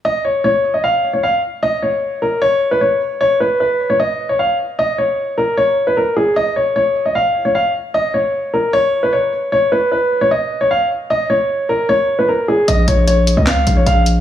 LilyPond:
<<
  \new Staff \with { instrumentName = "Grand piano" } { \time 4/4 \key bes \phrygian \tempo 4 = 152 ees''8 des''8 des''8. ees''16 f''8. des''16 f''8 r8 | ees''8 des''4 bes'8 des''8. ces''16 des''4 | des''8 ces''8 ces''8. des''16 ees''8. des''16 f''8 r8 | ees''8 des''4 bes'8 des''8. ces''16 bes'8 aes'8 |
ees''8 des''8 des''8. ees''16 f''8. des''16 f''8 r8 | ees''8 des''4 bes'8 des''8. ces''16 des''4 | des''8 ces''8 ces''8. des''16 ees''8. des''16 f''8 r8 | ees''8 des''4 bes'8 des''8. ces''16 bes'8 aes'8 |
ees''8 des''8 des''8. ees''16 f''8. des''16 f''8 r8 | }
  \new Staff \with { instrumentName = "808-style bass" } { \clef bass \time 4/4 \key bes \phrygian r1 | r1 | r1 | r1 |
r1 | r1 | r1 | r1 |
bes,,8 bes,,4~ bes,,16 des,8. bes,,8 bes,,4 | }
  \new DrumStaff \with { instrumentName = "Drums" } \drummode { \time 4/4 r4 r4 r4 r4 | r4 r4 r4 r4 | r4 r4 r4 r4 | r4 r4 r4 r4 |
r4 r4 r4 r4 | r4 r4 r4 r4 | r4 r4 r4 r4 | r4 r4 r4 r4 |
hh8 hh8 hh8 hh8 <hc hh sn>8 hh8 hh8 hh8 | }
>>